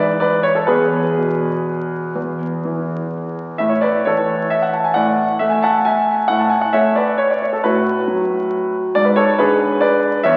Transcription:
Already playing: G#2 E3 B4 D5
0.20 B4 D5
0.43 C#5
0.55 A4
0.67 E2 G#4 B4
1.17 B2
2.15 E2
2.65 E3
3.58 A2 E5
3.69 C#5
3.81 B4 D5
4.05 E3 A4 C#5
4.50 E5
4.62 F#5
4.73 A5
4.84 G#5
4.94 A2 D5 F#5
5.39 A3 E5
5.50 G#5
5.62 F#5 A5
5.85 E5 G#5
6.28 A2 F#5
6.39 A5
6.50 G#5
6.61 F#5
6.73 A3 C#5 E5
6.95 B4 D5
7.18 C#5
7.30 D5
7.42 C#5
7.53 A4
7.64 A2 F#4 B4
8.08 F#3
8.95 G#2 D5
9.05 B4
9.16 A4 C#5
9.39 D3 G#4 B4
9.81 B4 D5
10.23 E2 C#5 E5

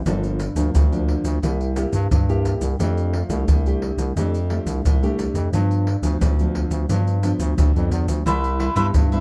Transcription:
0.06 G1 G2 F3 A#3 D4, pandeiro, maracas, surdo
0.23 pandeiro, maracas
0.40 pandeiro, maracas
0.55 D2 F3 A#3 D4, pandeiro, maracas, surdo
0.74 D2 D3, pandeiro, maracas, surdo
0.92 F3 A#3 D4, pandeiro, maracas
1.08 pandeiro, surdo
1.24 D2, pandeiro, maracas
1.42 C2 C3 A#3 E4 G4, pandeiro, maracas, surdo
1.61 pandeiro, maracas
1.76 A#3 E4 G4, pandeiro, maracas
1.93 G2, pandeiro, maracas, surdo
2.11 G2, pandeiro, maracas, surdo
2.28 A#3 E4 G4, pandeiro, maracas
2.45 pandeiro, maracas, surdo
2.61 C2, pandeiro, maracas, surdo
2.79 F2 F3 A3 D4 G4, pandeiro, maracas, surdo
2.97 pandeiro, maracas
3.13 pandeiro
3.29 C2 A3 D4 G4, pandeiro, maracas, surdo
3.48 C2 C3, pandeiro, maracas, surdo
3.66 A3 D4 G4, pandeiro, maracas
3.82 pandeiro, surdo
3.97 C2, pandeiro, maracas
4.16 F2 F3 A3 D4 G4, pandeiro, maracas, surdo
4.34 pandeiro, maracas
4.50 A3 D4 G4, pandeiro
4.66 C2, pandeiro, maracas, surdo
4.84 C2 C3, pandeiro, maracas, surdo
5.03 A3 D4 G4, pandeiro, maracas
5.19 pandeiro, maracas, surdo
5.34 F2, pandeiro, maracas, surdo
5.53 G2 F3 B3 D4, pandeiro, maracas, surdo
5.71 pandeiro, maracas
5.87 pandeiro
6.02 D2 F3 B3 D4, pandeiro, maracas, surdo
6.21 D2 D3, pandeiro, maracas, surdo
6.39 F3 B3 D4, pandeiro, maracas
6.55 pandeiro, surdo
6.70 D2, pandeiro, maracas
6.89 G2 F3 B3 D4, pandeiro, maracas, surdo
7.07 pandeiro, maracas
7.23 F3 B3 D4, pandeiro, maracas
7.39 D2, pandeiro, maracas, surdo
7.57 D2 D3, pandeiro, maracas, surdo
7.75 F2 F3 B3 D4, pandeiro, maracas
7.91 E2, pandeiro, maracas
8.07 D2, pandeiro, maracas, surdo
8.26 C2 C3 G3 E4 B4 C5 E5, pandeiro, maracas, surdo
8.44 pandeiro, maracas
8.59 E4 B4 C5 E5, pandeiro
8.76 G2 G3 B3 E4 B4 C5 E5, pandeiro, maracas, surdo
8.94 G2, pandeiro, maracas, surdo
9.12 G3 B3 E4 B4 C5 E5, pandeiro, maracas

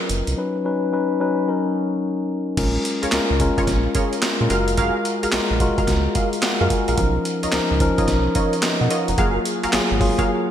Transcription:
Already playing: F#3 C#4 F4 A#4 B4 D#5
0.09 F#1, closed hi-hat
0.27 C2, closed hi-hat
0.37 F#3 C#4 D#4 B4
0.65 F#3 C#4 D#4 B4
0.92 F#3 C#4 D#4 B4
1.20 F#3 C#4 D#4 B4
1.48 F#3 C#4 D#4 A#4
2.57 A#1 G#3 C#4 F4 A#4, kick, closed hi-hat, crash
2.85 closed hi-hat
3.02 C#2 F4 G#4 A#4 C#5, closed hi-hat
3.12 C#2 G#3 C#4 F4 A#4, snare, clap, closed hi-hat
3.31 C#2
3.40 G#3 C#4 F4 A#4, kick, closed hi-hat
3.58 F4 G#4 A#4 C#5, kick, closed hi-hat
3.67 A#1, kick, snare, closed hi-hat
3.95 F4 G#4 A#4 C#5, kick, closed hi-hat
4.13 closed hi-hat
4.22 snare, clap, closed hi-hat
4.40 A#2 G#3 C#4 F4 A#4
4.50 F#1 G#3 F4 F#4 G#4 A#4 F5, closed hi-hat
4.68 closed hi-hat
4.77 F#4 G#4 A#4 F5, kick, closed hi-hat
5.05 closed hi-hat
5.23 A#1 F#4 G#4 A#4 F5, closed hi-hat
5.32 A#1 G#3 F4 F#4 A#4, snare, clap, closed hi-hat
5.51 A#1
5.60 G#3 F4 F#4 A#4, kick, closed hi-hat
5.78 F#4 G#4 A#4 F5, kick, closed hi-hat
5.87 C#2, kick, snare, closed hi-hat
6.15 F#4 G#4 A#4 F5, kick, closed hi-hat
6.33 closed hi-hat
6.42 F#5, snare, clap, closed hi-hat
6.60 F#2 G#3 F4 F#4 G#4 A#4 F5
6.70 G#5, kick, closed hi-hat
6.88 A#1 F#4 G#4 A#4 F5, closed hi-hat
6.98 B1 F3 C#4 D#4 A#4, kick, closed hi-hat
7.25 closed hi-hat
7.43 C#2 F4 A#4 C#5 D#5, closed hi-hat
7.52 C#2 F3 C#4 D#4 A#4, snare, clap, closed hi-hat
7.71 C#2
7.80 F3 C#4 D#4 A#4, kick, closed hi-hat
7.98 F4 A#4 C#5 D#5, kick, closed hi-hat
8.08 B1, kick, snare, closed hi-hat
8.35 F4 A#4 C#5 D#5, kick, closed hi-hat
8.53 closed hi-hat
8.63 B4 D#5, snare, clap, closed hi-hat
8.81 B2 D#5 F#5
8.90 F4 A#4 C#5 D#5, closed hi-hat
9.08 F1 F#5 A#5, closed hi-hat
9.18 F#1 F#3 A#3 F4 F#4 G#4 A#4 F5, kick, closed hi-hat
9.45 closed hi-hat
9.63 G#1 F#4 G#4 A#4 F5, closed hi-hat
9.73 G#1 F#3 A#3 F4 G#4, snare, clap, closed hi-hat
9.91 G#1
10.00 F#3 A#3 F4 G#4, kick, open hi-hat
10.18 F#4 G#4 A#4 F5, kick, closed hi-hat

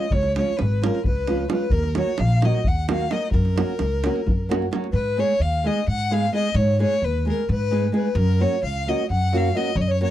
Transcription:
Already playing: D#5
0.11 C#2 C#5, davul low
0.23 davul high
0.36 F3 G#3 C#4 F4 C#5, davul high
0.57 G#1 B4, davul high
0.82 F3 G#3 C#4 F4 A#4, davul high
0.95 davul high
1.04 C#2 B4, davul low
1.27 F3 G#3 C#4 F4, davul high
1.48 F3 G#3 C#4 F4 B4, davul high
1.53 B4
1.70 D#2 A#4, davul low
1.84 davul high
1.95 F#3 A#3 D#4 F#4 C#5, davul high
2.18 A#1 F5, davul high
2.42 F#3 A#3 D#4 F#4 D#5, davul high
2.54 davul high
2.64 D#2 F#5, davul low
2.88 F#3 A#3 D#4 F#4 F5, davul high
3.10 F#3 A#3 D#4 F#4 D#5, davul high
3.31 F#2 A#4, davul low
3.45 davul high
3.56 F#3 A#3 C#4 F#4, davul high
3.79 C#2, davul high
4.04 F#3 A#3 C#4 F#4, davul high
4.16 davul high
4.26 F#2, davul low
4.49 F#3 A#3 C#4 F#4, davul high
4.62 davul high
4.71 F#3 A#3 C#4 F#4, davul high
4.84 davul high
4.92 G#2 B4
5.17 G#3 B3 D#4 G#4 C#5
5.39 D#2 F5
5.64 G#3 B3 D#4 G#4 D#5
5.87 G#2 F#5
6.11 G#3 B3 D#4 G#4 F5
6.32 G#3 B3 D#4 G#4 D#5
6.54 G#2 C#5
6.79 G#3 B3 D#4 G#4 C#5
7.02 D#2 B4
7.25 G#3 B3 D#4 G#4
7.29 A#4
7.49 G#2 B4
7.71 G#3 B3 D#4 G#4
7.92 G#3 B3 D#4 G#4 B4
7.96 B4
8.15 F#2 A#4
8.39 F#3 A#3 C#4 F#4 C#5
8.63 C#2 F5
8.86 F#3 A#3 C#4 F#4 D#5
9.09 F#2 F#5
9.33 F#3 A#3 C#4 F#4 F5
9.37 F5
9.55 F#3 A#3 C#4 F#4 D#5
9.75 F#2 C#5
9.81 D#5
9.88 C#5
9.99 F#3 A#3 C#4 F#4 C#5

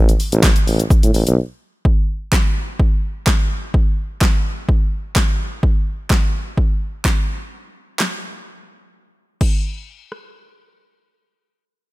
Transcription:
Already playing: A1
0.09 closed hi-hat, shaker
0.20 open hi-hat, shaker
0.32 A1, closed hi-hat, shaker
0.43 kick, snare, clap, shaker
0.56 closed hi-hat, shaker
0.67 A1, open hi-hat, shaker
0.80 closed hi-hat, shaker
0.90 kick, shaker
1.03 A2, closed hi-hat, shaker
1.14 A1, open hi-hat, shaker
1.27 B1, closed hi-hat, shaker
1.85 kick
2.32 kick, snare, clap
2.80 kick
3.27 kick, snare, clap
3.74 kick
4.21 kick, snare, clap
4.69 kick
5.16 kick, snare, clap
5.63 kick
6.10 kick, snare, clap
6.58 kick
7.05 kick, snare, clap
7.99 snare, clap
9.41 kick, crash
10.12 cross-stick

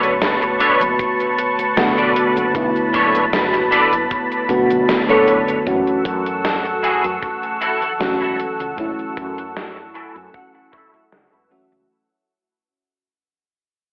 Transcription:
Already playing: F#1 D3 A3 B3 D4 F#4 A4 B4 C#5 A5 C#6
0.03 closed hi-hat, cabasa
0.22 snare, closed hi-hat, cabasa
0.42 muted clean electric guitar stroke, closed hi-hat, cabasa
0.60 D4 A4 B4 C#5, closed hi-hat
0.80 F#1, closed hi-hat, cabasa
0.99 muted clean electric guitar stroke, kick, closed hi-hat, cabasa
1.20 closed hi-hat, cabasa
1.39 closed hi-hat
1.59 muted fretless electric bass stroke, closed hi-hat, cabasa
1.76 F#1 D3 A3 B3 F#4, snare, closed hi-hat, cabasa
1.97 A1 D4 A4 B4 D5, closed hi-hat, cabasa
2.16 closed hi-hat
2.36 F#1, closed hi-hat, cabasa
2.53 B1 D3 A3 B3 E4 B5, kick, closed hi-hat, cabasa
2.76 closed hi-hat, cabasa
2.93 F#1 D4 A4 B4 C#5, kick, closed hi-hat
3.15 closed hi-hat, cabasa
3.33 snare, closed hi-hat, cabasa
3.53 muted clean electric guitar stroke, snare, closed hi-hat, cabasa
3.71 D4 A4 B4 D5, closed hi-hat
3.92 F#1, closed hi-hat, cabasa
4.10 muted clean electric guitar stroke, kick, closed hi-hat, cabasa
4.32 closed hi-hat, cabasa
4.49 F#1 D3 A3 B3 F#4, kick, closed hi-hat
4.70 F#1, closed hi-hat, cabasa
4.89 snare, closed hi-hat, cabasa
5.08 F#1 D3 A3 B3 D4 A4 B4 C#5, closed hi-hat, cabasa
5.27 kick, closed hi-hat
5.48 closed hi-hat, cabasa
5.65 F#1 E3 F#3 A3 C#4 F#4 A4 F#5 C#6 E6, kick, closed hi-hat
5.87 closed hi-hat
6.05 F#2, kick, closed hi-hat
6.26 closed hi-hat
6.44 muted clean electric guitar stroke, snare, closed hi-hat
6.65 muted clean electric guitar stroke, closed hi-hat
6.83 E4 F#4 G#4, closed hi-hat
7.04 F#2, closed hi-hat
7.22 muted clean electric guitar stroke, kick, closed hi-hat
7.43 closed hi-hat
7.61 E4 F#4 A4, closed hi-hat
7.82 muted fretless electric bass stroke, closed hi-hat
7.99 C#2 E3 F#3 A3 C#4 F#4, snare, closed hi-hat
8.21 E1 E4 F#4 A4, closed hi-hat
8.40 closed hi-hat
8.60 C#2, muted clean electric guitar stroke, closed hi-hat
8.77 F#1 E3 F#3 A3 C#4 E4, kick, closed hi-hat
8.99 closed hi-hat
9.17 F#2, kick, closed hi-hat
9.38 closed hi-hat
9.56 muted clean electric guitar stroke, snare, closed hi-hat
9.76 muted clean electric guitar stroke, snare, closed hi-hat
9.95 E4 F#4 A4 G#5, closed hi-hat
10.16 F#2, closed hi-hat
10.34 F#5, muted clean electric guitar stroke, kick, closed hi-hat
10.55 F#5, closed hi-hat
10.72 E4 F#4 A4 E5, kick, closed hi-hat
10.94 muted fretless electric bass stroke, closed hi-hat
11.12 C#2 F#5, snare, closed hi-hat
11.32 E1 E4 F#4 B4 E5, closed hi-hat
11.50 E3 F#3 A3 C#4 F#4 E5, closed hi-hat
11.71 C#2, muted clean electric guitar stroke, closed hi-hat

